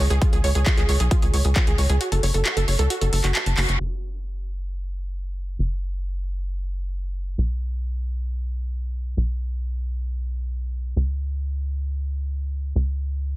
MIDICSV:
0, 0, Header, 1, 4, 480
1, 0, Start_track
1, 0, Key_signature, 3, "minor"
1, 0, Tempo, 447761
1, 233, Time_signature, 4, 2, 24, 8
1, 14326, End_track
2, 0, Start_track
2, 0, Title_t, "Synth pluck"
2, 0, Program_c, 0, 84
2, 111, Note_on_c, 0, 68, 103
2, 177, Note_off_c, 0, 68, 0
2, 232, Note_on_c, 0, 65, 86
2, 298, Note_off_c, 0, 65, 0
2, 352, Note_on_c, 0, 68, 99
2, 391, Note_off_c, 0, 68, 0
2, 471, Note_on_c, 0, 73, 108
2, 537, Note_off_c, 0, 73, 0
2, 591, Note_on_c, 0, 68, 101
2, 657, Note_off_c, 0, 68, 0
2, 712, Note_on_c, 0, 65, 84
2, 811, Note_off_c, 0, 65, 0
2, 830, Note_on_c, 0, 68, 103
2, 897, Note_off_c, 0, 68, 0
2, 951, Note_on_c, 0, 73, 81
2, 1050, Note_off_c, 0, 73, 0
2, 1071, Note_on_c, 0, 68, 101
2, 1137, Note_off_c, 0, 68, 0
2, 1191, Note_on_c, 0, 65, 85
2, 1290, Note_off_c, 0, 65, 0
2, 1311, Note_on_c, 0, 68, 78
2, 1377, Note_off_c, 0, 68, 0
2, 1432, Note_on_c, 0, 73, 77
2, 1530, Note_off_c, 0, 73, 0
2, 1552, Note_on_c, 0, 68, 76
2, 1618, Note_off_c, 0, 68, 0
2, 1672, Note_on_c, 0, 65, 82
2, 1771, Note_off_c, 0, 65, 0
2, 1792, Note_on_c, 0, 68, 106
2, 1831, Note_off_c, 0, 68, 0
2, 1912, Note_on_c, 0, 73, 80
2, 2011, Note_off_c, 0, 73, 0
2, 2032, Note_on_c, 0, 68, 103
2, 2098, Note_off_c, 0, 68, 0
2, 2152, Note_on_c, 0, 66, 82
2, 2251, Note_off_c, 0, 66, 0
2, 2272, Note_on_c, 0, 69, 76
2, 2338, Note_off_c, 0, 69, 0
2, 2392, Note_on_c, 0, 73, 77
2, 2432, Note_off_c, 0, 73, 0
2, 2511, Note_on_c, 0, 69, 74
2, 2610, Note_off_c, 0, 69, 0
2, 2631, Note_on_c, 0, 66, 85
2, 2730, Note_off_c, 0, 66, 0
2, 2751, Note_on_c, 0, 69, 103
2, 2791, Note_off_c, 0, 69, 0
2, 2872, Note_on_c, 0, 73, 83
2, 2970, Note_off_c, 0, 73, 0
2, 2992, Note_on_c, 0, 69, 100
2, 3058, Note_off_c, 0, 69, 0
2, 3111, Note_on_c, 0, 66, 84
2, 3177, Note_off_c, 0, 66, 0
2, 3232, Note_on_c, 0, 69, 80
2, 3298, Note_off_c, 0, 69, 0
2, 3352, Note_on_c, 0, 69, 79
2, 3451, Note_off_c, 0, 69, 0
2, 3473, Note_on_c, 0, 66, 77
2, 3538, Note_off_c, 0, 66, 0
2, 3594, Note_on_c, 0, 81, 82
2, 3659, Note_off_c, 0, 81, 0
2, 3713, Note_on_c, 0, 81, 79
2, 3752, Note_off_c, 0, 81, 0
2, 3833, Note_on_c, 0, 66, 102
2, 3898, Note_off_c, 0, 66, 0
2, 3952, Note_on_c, 0, 85, 106
2, 4018, Note_off_c, 0, 85, 0
2, 14326, End_track
3, 0, Start_track
3, 0, Title_t, "Analog synth bass"
3, 0, Program_c, 1, 38
3, 112, Note_on_c, 1, 37, 92
3, 207, Note_off_c, 1, 37, 0
3, 352, Note_on_c, 1, 37, 83
3, 447, Note_off_c, 1, 37, 0
3, 473, Note_on_c, 1, 37, 104
3, 568, Note_off_c, 1, 37, 0
3, 593, Note_on_c, 1, 37, 93
3, 688, Note_off_c, 1, 37, 0
3, 832, Note_on_c, 1, 37, 89
3, 927, Note_off_c, 1, 37, 0
3, 952, Note_on_c, 1, 37, 104
3, 1047, Note_off_c, 1, 37, 0
3, 1073, Note_on_c, 1, 35, 96
3, 1168, Note_off_c, 1, 35, 0
3, 1313, Note_on_c, 1, 37, 85
3, 1408, Note_off_c, 1, 37, 0
3, 1433, Note_on_c, 1, 37, 101
3, 1528, Note_off_c, 1, 37, 0
3, 1553, Note_on_c, 1, 37, 93
3, 1648, Note_off_c, 1, 37, 0
3, 1792, Note_on_c, 1, 37, 86
3, 1887, Note_off_c, 1, 37, 0
3, 1912, Note_on_c, 1, 37, 98
3, 2007, Note_off_c, 1, 37, 0
3, 2032, Note_on_c, 1, 37, 91
3, 2127, Note_off_c, 1, 37, 0
3, 2271, Note_on_c, 1, 30, 83
3, 2367, Note_off_c, 1, 30, 0
3, 2392, Note_on_c, 1, 30, 99
3, 2487, Note_off_c, 1, 30, 0
3, 2511, Note_on_c, 1, 30, 92
3, 2607, Note_off_c, 1, 30, 0
3, 2751, Note_on_c, 1, 30, 92
3, 2847, Note_off_c, 1, 30, 0
3, 2871, Note_on_c, 1, 30, 103
3, 2967, Note_off_c, 1, 30, 0
3, 2991, Note_on_c, 1, 37, 96
3, 3087, Note_off_c, 1, 37, 0
3, 3232, Note_on_c, 1, 30, 86
3, 3327, Note_off_c, 1, 30, 0
3, 3352, Note_on_c, 1, 30, 101
3, 3447, Note_off_c, 1, 30, 0
3, 3471, Note_on_c, 1, 30, 96
3, 3567, Note_off_c, 1, 30, 0
3, 3711, Note_on_c, 1, 30, 86
3, 3807, Note_off_c, 1, 30, 0
3, 3832, Note_on_c, 1, 30, 102
3, 3927, Note_off_c, 1, 30, 0
3, 3953, Note_on_c, 1, 30, 89
3, 4048, Note_off_c, 1, 30, 0
3, 4073, Note_on_c, 1, 30, 88
3, 5968, Note_off_c, 1, 30, 0
3, 5992, Note_on_c, 1, 30, 86
3, 7888, Note_off_c, 1, 30, 0
3, 7912, Note_on_c, 1, 35, 89
3, 9808, Note_off_c, 1, 35, 0
3, 9832, Note_on_c, 1, 35, 89
3, 11728, Note_off_c, 1, 35, 0
3, 11753, Note_on_c, 1, 37, 87
3, 13649, Note_off_c, 1, 37, 0
3, 13673, Note_on_c, 1, 37, 87
3, 14326, Note_off_c, 1, 37, 0
3, 14326, End_track
4, 0, Start_track
4, 0, Title_t, "Drums"
4, 112, Note_on_c, 9, 42, 52
4, 219, Note_off_c, 9, 42, 0
4, 231, Note_on_c, 9, 36, 115
4, 232, Note_on_c, 9, 42, 98
4, 338, Note_off_c, 9, 36, 0
4, 339, Note_off_c, 9, 42, 0
4, 352, Note_on_c, 9, 42, 55
4, 459, Note_off_c, 9, 42, 0
4, 472, Note_on_c, 9, 46, 100
4, 579, Note_off_c, 9, 46, 0
4, 592, Note_on_c, 9, 42, 54
4, 699, Note_off_c, 9, 42, 0
4, 711, Note_on_c, 9, 36, 111
4, 711, Note_on_c, 9, 39, 121
4, 711, Note_on_c, 9, 42, 94
4, 818, Note_off_c, 9, 36, 0
4, 819, Note_off_c, 9, 39, 0
4, 819, Note_off_c, 9, 42, 0
4, 831, Note_on_c, 9, 39, 35
4, 831, Note_on_c, 9, 42, 51
4, 938, Note_off_c, 9, 39, 0
4, 938, Note_off_c, 9, 42, 0
4, 951, Note_on_c, 9, 46, 102
4, 1059, Note_off_c, 9, 46, 0
4, 1072, Note_on_c, 9, 42, 59
4, 1179, Note_off_c, 9, 42, 0
4, 1191, Note_on_c, 9, 36, 109
4, 1191, Note_on_c, 9, 42, 97
4, 1299, Note_off_c, 9, 36, 0
4, 1299, Note_off_c, 9, 42, 0
4, 1312, Note_on_c, 9, 42, 53
4, 1419, Note_off_c, 9, 42, 0
4, 1432, Note_on_c, 9, 46, 101
4, 1539, Note_off_c, 9, 46, 0
4, 1552, Note_on_c, 9, 42, 55
4, 1659, Note_off_c, 9, 42, 0
4, 1671, Note_on_c, 9, 36, 112
4, 1671, Note_on_c, 9, 39, 120
4, 1671, Note_on_c, 9, 42, 96
4, 1778, Note_off_c, 9, 36, 0
4, 1778, Note_off_c, 9, 39, 0
4, 1778, Note_off_c, 9, 42, 0
4, 1792, Note_on_c, 9, 42, 53
4, 1899, Note_off_c, 9, 42, 0
4, 1911, Note_on_c, 9, 46, 101
4, 2019, Note_off_c, 9, 46, 0
4, 2032, Note_on_c, 9, 42, 55
4, 2139, Note_off_c, 9, 42, 0
4, 2152, Note_on_c, 9, 42, 102
4, 2259, Note_off_c, 9, 42, 0
4, 2272, Note_on_c, 9, 42, 54
4, 2380, Note_off_c, 9, 42, 0
4, 2392, Note_on_c, 9, 46, 103
4, 2500, Note_off_c, 9, 46, 0
4, 2513, Note_on_c, 9, 42, 56
4, 2620, Note_off_c, 9, 42, 0
4, 2633, Note_on_c, 9, 39, 121
4, 2633, Note_on_c, 9, 42, 102
4, 2740, Note_off_c, 9, 39, 0
4, 2740, Note_off_c, 9, 42, 0
4, 2753, Note_on_c, 9, 42, 55
4, 2860, Note_off_c, 9, 42, 0
4, 2872, Note_on_c, 9, 46, 104
4, 2980, Note_off_c, 9, 46, 0
4, 2992, Note_on_c, 9, 42, 59
4, 3099, Note_off_c, 9, 42, 0
4, 3112, Note_on_c, 9, 42, 101
4, 3219, Note_off_c, 9, 42, 0
4, 3232, Note_on_c, 9, 42, 57
4, 3339, Note_off_c, 9, 42, 0
4, 3352, Note_on_c, 9, 46, 105
4, 3460, Note_off_c, 9, 46, 0
4, 3473, Note_on_c, 9, 39, 36
4, 3473, Note_on_c, 9, 42, 56
4, 3580, Note_off_c, 9, 39, 0
4, 3580, Note_off_c, 9, 42, 0
4, 3592, Note_on_c, 9, 39, 120
4, 3592, Note_on_c, 9, 42, 97
4, 3700, Note_off_c, 9, 39, 0
4, 3700, Note_off_c, 9, 42, 0
4, 3712, Note_on_c, 9, 42, 55
4, 3820, Note_off_c, 9, 42, 0
4, 3833, Note_on_c, 9, 39, 92
4, 3833, Note_on_c, 9, 46, 101
4, 3940, Note_off_c, 9, 39, 0
4, 3940, Note_off_c, 9, 46, 0
4, 3953, Note_on_c, 9, 42, 55
4, 4061, Note_off_c, 9, 42, 0
4, 4073, Note_on_c, 9, 49, 81
4, 4180, Note_off_c, 9, 49, 0
4, 14326, End_track
0, 0, End_of_file